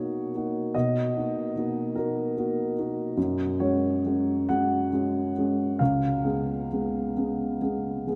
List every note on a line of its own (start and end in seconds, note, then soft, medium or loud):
0.00 0.75 B2 soft
0.00 0.35 A#3 soft
0.00 0.36 D#4 soft
0.00 0.37 F#4 soft
0.00 0.73 C#5 medium
0.00 0.74 D#5 medium
0.35 0.71 A#3 soft
0.35 0.72 D#4 soft
0.35 0.72 F#4 soft
0.74 1.14 B2 soft
0.74 1.96 D#5 medium
1.17 1.53 A#3 soft
1.17 1.53 D#4 soft
1.17 1.53 F#4 soft
1.56 1.92 A#3 soft
1.56 1.93 D#4 soft
1.56 1.93 F#4 soft
1.95 2.33 A#3 soft
1.95 2.33 D#4 soft
1.95 2.33 F#4 soft
1.95 3.16 A#4 medium
2.37 2.73 A#3 soft
2.37 2.73 D#4 soft
2.37 2.74 F#4 soft
2.79 3.14 A#3 soft
2.79 3.14 D#4 soft
2.79 3.14 F#4 soft
3.17 3.58 F#2 medium
3.60 4.00 G#3 soft
3.60 4.01 C#4 soft
3.60 4.00 F#4 soft
3.60 4.49 C#5 medium
4.06 4.45 G#3 soft
4.06 4.46 C#4 soft
4.06 4.46 F#4 soft
4.49 4.88 G#3 soft
4.49 4.89 C#4 soft
4.49 4.89 F#4 soft
4.49 5.80 F#5 medium
4.93 5.32 G#3 soft
4.93 5.32 C#4 soft
4.93 5.32 F#4 soft
5.38 5.77 G#3 soft
5.38 5.77 C#4 soft
5.38 5.78 F#4 soft
5.79 6.25 C#2 soft
5.79 8.07 F5 medium
6.24 6.66 G#3 soft
6.24 6.66 B3 soft
6.24 6.66 G#4 soft
6.72 7.13 G#3 soft
6.72 7.13 B3 soft
6.72 7.13 G#4 soft
7.17 7.58 G#3 soft
7.17 7.58 B3 soft
7.17 7.58 G#4 soft
7.61 8.03 G#3 soft
7.61 8.03 B3 soft
7.61 8.04 G#4 soft
8.07 8.15 G#3 soft
8.07 8.15 B3 soft
8.07 8.15 G#4 soft